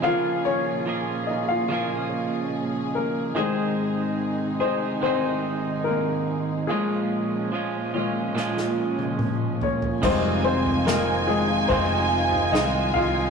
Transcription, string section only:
0, 0, Header, 1, 2, 480
1, 0, Start_track
1, 0, Key_signature, -4, "minor"
1, 0, Tempo, 833333
1, 18, Time_signature, 4, 2, 24, 8
1, 7661, End_track
2, 0, Start_track
2, 0, Title_t, "String section"
2, 0, Program_c, 0, 48
2, 0, Note_on_c, 0, 53, 53
2, 0, Note_on_c, 0, 68, 69
2, 13, Note_on_c, 0, 46, 61
2, 14, Note_on_c, 0, 56, 56
2, 15, Note_on_c, 0, 61, 55
2, 1913, Note_off_c, 0, 53, 0
2, 1917, Note_off_c, 0, 46, 0
2, 1918, Note_off_c, 0, 61, 0
2, 1948, Note_on_c, 0, 48, 61
2, 1948, Note_on_c, 0, 63, 61
2, 1950, Note_on_c, 0, 51, 59
2, 3833, Note_off_c, 0, 56, 0
2, 3844, Note_off_c, 0, 48, 0
2, 3844, Note_off_c, 0, 63, 0
2, 3845, Note_off_c, 0, 51, 0
2, 3845, Note_on_c, 0, 53, 60
2, 3847, Note_on_c, 0, 61, 58
2, 3850, Note_on_c, 0, 56, 59
2, 3851, Note_on_c, 0, 46, 62
2, 5753, Note_off_c, 0, 53, 0
2, 5753, Note_off_c, 0, 61, 0
2, 5755, Note_off_c, 0, 46, 0
2, 5755, Note_off_c, 0, 56, 0
2, 5755, Note_off_c, 0, 68, 0
2, 5770, Note_on_c, 0, 63, 68
2, 5775, Note_on_c, 0, 48, 70
2, 5775, Note_on_c, 0, 53, 63
2, 5775, Note_on_c, 0, 65, 85
2, 7661, Note_off_c, 0, 48, 0
2, 7661, Note_off_c, 0, 53, 0
2, 7661, Note_off_c, 0, 63, 0
2, 7661, Note_off_c, 0, 65, 0
2, 7661, End_track
0, 0, End_of_file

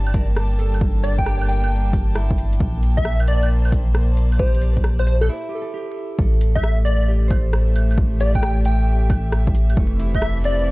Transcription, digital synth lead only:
0, 0, Header, 1, 2, 480
1, 0, Start_track
1, 0, Tempo, 447761
1, 873, Time_signature, 4, 2, 24, 8
1, 11485, End_track
2, 0, Start_track
2, 0, Title_t, "Digital synth lead"
2, 0, Program_c, 0, 84
2, 1110, Note_on_c, 0, 74, 94
2, 1240, Note_off_c, 0, 74, 0
2, 1270, Note_on_c, 0, 79, 90
2, 1519, Note_off_c, 0, 79, 0
2, 1592, Note_on_c, 0, 79, 94
2, 2072, Note_off_c, 0, 79, 0
2, 3187, Note_on_c, 0, 76, 89
2, 3438, Note_off_c, 0, 76, 0
2, 3517, Note_on_c, 0, 74, 94
2, 3771, Note_off_c, 0, 74, 0
2, 4713, Note_on_c, 0, 72, 88
2, 4969, Note_off_c, 0, 72, 0
2, 5355, Note_on_c, 0, 72, 90
2, 5405, Note_off_c, 0, 72, 0
2, 5433, Note_on_c, 0, 72, 75
2, 5536, Note_off_c, 0, 72, 0
2, 5587, Note_on_c, 0, 69, 95
2, 5670, Note_off_c, 0, 69, 0
2, 7027, Note_on_c, 0, 76, 93
2, 7278, Note_off_c, 0, 76, 0
2, 7343, Note_on_c, 0, 74, 94
2, 7604, Note_off_c, 0, 74, 0
2, 8798, Note_on_c, 0, 74, 91
2, 8924, Note_off_c, 0, 74, 0
2, 8955, Note_on_c, 0, 79, 93
2, 9202, Note_off_c, 0, 79, 0
2, 9279, Note_on_c, 0, 79, 92
2, 9756, Note_off_c, 0, 79, 0
2, 10887, Note_on_c, 0, 76, 93
2, 11128, Note_off_c, 0, 76, 0
2, 11205, Note_on_c, 0, 74, 95
2, 11455, Note_off_c, 0, 74, 0
2, 11485, End_track
0, 0, End_of_file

